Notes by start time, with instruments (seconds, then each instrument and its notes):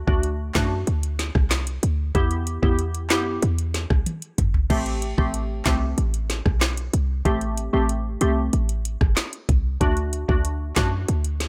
0.07 808-style bass D2, synth pluck A3 D4 F#4, kick
0.23 closed hi-hat
0.55 808-style bass F#2, synth pluck A3 D4 F#4, kick, snare, clap, closed hi-hat
0.87 808-style bass D2, closed hi-hat
1.03 closed hi-hat
1.19 snare, closed hi-hat
1.35 808-style bass C2, kick, cross-stick
1.50 snare, clap, closed hi-hat
1.67 closed hi-hat
1.83 808-style bass D2, closed hi-hat
2.15 808-style bass E2, synth pluck B3 E4 G4, kick, closed hi-hat
2.31 closed hi-hat
2.47 closed hi-hat
2.62 808-style bass E2, synth pluck B3 E4 G4, kick
2.79 closed hi-hat
2.95 closed hi-hat
3.10 808-style bass F#2, synth pluck B3 E4 G4, snare, clap, closed hi-hat
3.42 808-style bass E2, closed hi-hat
3.58 closed hi-hat
3.74 snare, closed hi-hat
3.90 808-style bass C2, kick, cross-stick
4.06 closed hi-hat, high tom
4.22 closed hi-hat
4.38 808-style bass G1, closed hi-hat, mid tom
4.54 floor tom
4.70 808-style bass A1, synth pluck A3 C4 G4, kick, crash
4.86 closed hi-hat
5.02 closed hi-hat
5.18 808-style bass A1, synth pluck A3 C4 G4, kick
5.34 closed hi-hat
5.65 808-style bass C2, synth pluck A3 C4 G4, kick, snare, clap, closed hi-hat
5.98 808-style bass A1, closed hi-hat
6.14 closed hi-hat
6.30 snare, closed hi-hat
6.46 808-style bass B1, kick, cross-stick
6.61 snare, clap, closed hi-hat
6.77 closed hi-hat
6.93 808-style bass C2, closed hi-hat
7.25 808-style bass A1, synth pluck A3 C4 G4, kick, closed hi-hat
7.41 closed hi-hat
7.58 closed hi-hat
7.73 808-style bass A1, synth pluck A3 C4 G4
7.89 closed hi-hat
8.21 808-style bass C2, synth pluck A3 C4 G4, closed hi-hat
8.53 808-style bass A1, closed hi-hat
8.69 closed hi-hat
8.85 closed hi-hat
9.01 808-style bass F#1, kick, cross-stick
9.16 snare, clap, closed hi-hat
9.33 closed hi-hat
9.49 808-style bass C2, kick, closed hi-hat
9.81 808-style bass D2, synth pluck A3 D4 F#4, kick, closed hi-hat
9.97 closed hi-hat
10.13 closed hi-hat
10.28 808-style bass D2, synth pluck A3 D4 F#4, kick
10.45 closed hi-hat
10.76 808-style bass F#2, synth pluck A3 D4 F#4, kick, snare, clap, closed hi-hat
11.08 808-style bass D2, closed hi-hat
11.24 closed hi-hat
11.40 snare, closed hi-hat